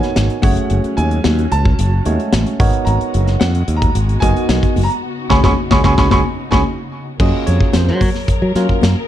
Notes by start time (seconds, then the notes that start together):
Already playing: B2 F#3 B3 D#4 F#4 A#4 C#5 G#5
0.03 snare, closed hi-hat
0.16 G#1, snare, closed hi-hat
0.30 closed hi-hat
0.42 F#1 F#3 A3 C#4 F#4 G#4 C#5 F#5, kick, open hi-hat, high conga
0.57 closed hi-hat
0.70 F#1, closed hi-hat, muted conga
0.84 muted fingered electric bass stroke, closed hi-hat
0.97 D#2 G#5, closed hi-hat
1.11 closed hi-hat
1.24 D#2, snare, closed hi-hat, high conga, low conga
1.39 closed hi-hat
1.52 C#2 A5, closed hi-hat, muted conga
1.65 kick
1.79 F#1, closed hi-hat, muted conga
2.05 D#2 G#3 A3 C#4 F#4 C#5, closed hi-hat, muted conga
2.20 closed hi-hat
2.33 A1, snare, closed hi-hat, high conga
2.46 closed hi-hat
2.60 G#1 G#3 B3 D#4 F#4 A#4 C#5, kick, open hi-hat
2.73 closed hi-hat
2.85 G#1 A#5, closed hi-hat, muted conga
3.01 closed hi-hat
3.14 F#1, closed hi-hat
3.27 snare, closed hi-hat
3.40 F2 F#5, snare, closed hi-hat, high conga
3.55 closed hi-hat
3.68 D#2, closed hi-hat
3.76 A#5
3.82 kick, closed hi-hat
3.95 G#1, closed hi-hat, muted conga
4.09 closed hi-hat
4.20 F#1 B3 D#4 F#4 A#4 D#5 G#5, kick, closed hi-hat, muted conga, high conga
4.36 closed hi-hat
4.49 B1, snare, closed hi-hat
4.63 kick, closed hi-hat
4.76 F#1, open hi-hat, high conga
4.84 A#5
4.90 closed hi-hat
5.02 C#3 D#4
5.30 C#2 C#4 F#4 G#4 G#5 B5 C#6, kick, snare, high conga
5.43 C#2 C#4 F#4 G#4 G#5 B5 C#6, kick, snare, high conga
5.71 C#2 C#4 F#4 G#4 G#5 B5 C#6, kick, snare, high conga
5.84 C#2 C#4 F#4 G#4 G#5 B5 C#6, kick, snare, high conga
5.98 C#2 C#4 F#4 G#4 G#5 B5 C#6, kick, snare, high conga
6.11 C#2 C#4 F#4 G#4 G#5 B5 C#6, kick, snare, high conga
6.51 C#2 C#4 F#4 G#4 G#5 B5 C#6, kick, snare, high conga
7.19 F#2 F#3 A#3 C#4 F4 F#4 G#4 A#4 D#5, kick, crash, muted conga
7.46 F2 C#5, closed hi-hat
7.61 kick
7.73 F2 C5, snare, closed hi-hat, muted conga, high conga
7.88 F#3, snare
7.97 C5, open hi-hat, high conga
8.01 C#5, kick
8.15 snare
8.28 kick, closed hi-hat, muted conga
8.42 F#3
8.55 F#3 A#3 C#4 F4 F#4 A#4, snare, closed hi-hat, muted conga
8.69 kick
8.82 F#2, snare, closed hi-hat, high conga